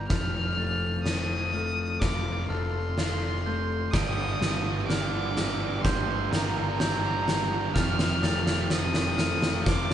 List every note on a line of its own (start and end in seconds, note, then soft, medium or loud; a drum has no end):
0.00 0.11 G3 medium
0.00 0.11 G4 medium
0.00 0.11 A#4 medium
0.00 0.10 G6 medium
0.06 1.98 F1 medium
0.06 2.50 F3 medium
0.06 1.04 F6 loud
0.06 kick loud
0.06 snare medium
0.11 0.59 F6 medium
0.57 1.52 A3 medium
0.57 1.54 A6 medium
1.04 3.45 C4 medium
1.04 2.01 D#6 loud
1.04 snare medium
1.53 3.45 A3 medium
1.53 2.49 F6 medium
1.99 2.47 F1 medium
1.99 2.97 F4 medium
1.99 2.49 D6 medium
1.99 kick loud
1.99 snare medium
2.47 3.89 F1 medium
2.47 3.94 A4 medium
2.47 3.93 C6 loud
2.47 3.46 F6 medium
2.98 3.94 F4 medium
2.98 snare medium
3.46 3.93 A3 medium
3.46 3.94 G6 medium
3.91 5.81 G1 medium
3.91 4.00 G2 medium
3.91 4.01 D3 medium
3.91 4.40 G3 medium
3.91 4.85 D#6 loud
3.91 4.89 D7 medium
3.91 kick loud
3.91 snare medium
4.00 4.08 G2 medium
4.00 4.09 D3 medium
4.09 4.16 G2 medium
4.09 4.17 D3 medium
4.17 4.23 G2 medium
4.17 4.25 D3 medium
4.24 4.31 G2 medium
4.24 4.32 D3 medium
4.31 4.39 G2 medium
4.31 4.40 D3 medium
4.40 4.47 G2 medium
4.40 4.47 D3 medium
4.40 5.36 G3 medium
4.40 snare medium
4.47 4.53 G2 medium
4.47 4.55 D3 medium
4.54 4.61 G2 medium
4.54 4.62 D3 medium
4.62 4.69 G2 medium
4.62 4.69 D3 medium
4.69 4.77 G2 medium
4.69 4.77 D3 medium
4.77 4.85 G2 medium
4.77 4.85 D3 medium
4.85 4.92 G2 medium
4.85 4.93 D3 medium
4.85 5.83 D6 loud
4.89 5.00 G2 medium
4.89 7.29 D4 medium
4.89 5.85 F6 medium
4.89 snare medium
4.94 5.00 D3 medium
5.00 5.08 G2 medium
5.00 5.07 D3 medium
5.08 5.16 G2 medium
5.08 5.15 D3 medium
5.16 5.23 G2 medium
5.16 5.23 D3 medium
5.23 5.31 G2 medium
5.23 5.31 D3 medium
5.31 5.38 G2 medium
5.31 5.38 D3 medium
5.37 5.46 G2 medium
5.37 5.46 D3 medium
5.37 7.27 G3 medium
5.37 snare medium
5.46 5.53 G2 medium
5.46 5.54 D3 medium
5.54 5.61 G2 medium
5.54 5.62 D3 medium
5.61 5.69 G2 medium
5.61 5.70 D3 medium
5.69 5.76 G2 medium
5.69 5.78 D3 medium
5.77 5.83 G2 medium
5.77 5.85 D3 medium
5.82 6.30 G1 medium
5.82 5.91 G2 medium
5.82 5.93 D3 medium
5.82 6.31 C6 medium
5.82 6.79 G6 medium
5.82 kick loud
5.82 snare medium
5.86 6.79 G4 medium
5.92 5.99 G2 medium
5.92 6.00 D3 medium
6.00 6.07 G2 medium
6.00 6.08 D3 medium
6.07 6.14 G2 medium
6.07 6.15 D3 medium
6.15 6.23 G2 medium
6.15 6.23 D3 medium
6.23 6.31 G2 medium
6.23 6.30 D3 medium
6.30 7.72 G1 medium
6.30 6.38 G2 medium
6.30 6.38 D3 medium
6.30 7.76 A#4 medium
6.30 7.76 A#5 loud
6.30 snare medium
6.39 6.45 G2 medium
6.39 6.46 D3 medium
6.45 6.53 G2 medium
6.45 6.53 D3 medium
6.53 6.60 G2 medium
6.53 6.61 D3 medium
6.61 6.68 G2 medium
6.61 6.68 D3 medium
6.69 6.76 G2 medium
6.69 6.76 D3 medium
6.76 6.84 G2 medium
6.76 6.84 D3 medium
6.76 7.76 G4 medium
6.76 7.76 G6 medium
6.76 snare loud
6.84 6.92 G2 medium
6.84 6.91 D3 medium
6.91 6.98 G2 medium
6.91 6.99 D3 medium
6.99 7.06 G2 medium
6.99 7.06 D3 medium
7.06 7.13 G2 medium
7.06 7.14 D3 medium
7.14 7.21 G2 medium
7.14 7.22 D3 medium
7.22 7.29 G2 medium
7.22 7.30 D3 medium
7.28 7.36 G2 medium
7.28 7.38 D3 medium
7.28 7.76 G3 medium
7.28 snare medium
7.36 7.44 G2 medium
7.36 7.46 D3 medium
7.46 7.52 G2 medium
7.46 7.52 D3 medium
7.53 7.59 G2 medium
7.53 7.60 D3 medium
7.59 7.67 G2 medium
7.59 7.68 D3 medium
7.68 7.75 G2 medium
7.68 7.75 D3 medium
7.74 9.63 F1 medium
7.74 7.82 F2 medium
7.74 7.83 C3 medium
7.74 9.94 F3 medium
7.74 8.73 F6 loud
7.74 8.23 F6 medium
7.74 kick medium
7.74 snare medium
7.83 7.89 F2 medium
7.83 7.91 C3 medium
7.89 7.97 F2 medium
7.89 7.99 C3 medium
7.99 8.05 F2 medium
7.99 8.06 C3 medium
7.99 snare loud
8.05 8.13 F2 medium
8.05 8.14 C3 medium
8.13 8.20 F2 medium
8.13 8.22 C3 medium
8.21 8.28 F2 medium
8.21 8.29 C3 medium
8.21 9.17 A3 medium
8.21 9.19 A6 medium
8.21 snare medium
8.29 8.36 F2 medium
8.29 8.37 C3 medium
8.36 8.44 F2 medium
8.36 8.44 C3 medium
8.45 8.51 F2 medium
8.45 8.52 C3 medium
8.45 snare medium
8.52 8.60 F2 medium
8.52 8.61 C3 medium
8.60 8.68 F2 medium
8.60 8.69 C3 medium
8.68 8.76 F2 medium
8.68 8.77 C3 medium
8.68 9.94 C4 medium
8.68 9.65 D#6 loud
8.68 snare loud
8.76 8.83 F2 medium
8.76 8.84 C3 medium
8.84 8.91 F2 medium
8.84 8.92 C3 medium
8.92 8.99 F2 medium
8.92 8.99 C3 medium
8.92 snare loud
8.99 9.06 F2 medium
8.99 9.07 C3 medium
9.06 9.14 F2 medium
9.06 9.14 C3 medium
9.14 9.22 F2 medium
9.14 9.22 C3 medium
9.14 9.94 A3 medium
9.14 9.94 F6 medium
9.14 snare loud
9.22 9.30 F2 medium
9.22 9.31 C3 medium
9.30 9.38 F2 medium
9.30 9.38 C3 medium
9.39 9.45 F2 medium
9.39 9.46 C3 medium
9.39 snare loud
9.45 9.53 F2 medium
9.45 9.54 C3 medium
9.53 9.61 F2 medium
9.53 9.61 C3 medium
9.61 9.68 F2 medium
9.61 9.70 C3 medium
9.66 9.94 F1 medium
9.66 9.76 F2 medium
9.66 9.94 F4 medium
9.66 9.94 D6 loud
9.66 kick loud
9.66 snare loud
9.70 9.77 C3 medium
9.77 9.83 F2 medium
9.77 9.85 C3 medium
9.83 9.91 F2 medium
9.83 9.91 C3 medium